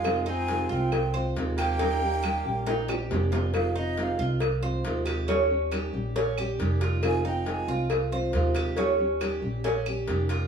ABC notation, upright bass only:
X:1
M:4/4
L:1/8
Q:1/4=138
K:Fm
V:1 name="Upright bass" clef=bass
F,,3 C,,3 E,,2- | E,,3 B,,,3 F,,,2- | F,,,3 C,,3 E,,2- | E,,3 B,,,3 F,,,2- |
F,,,3 C,,3 E,,2- | E,,3 B,,,3 F,,,2 |]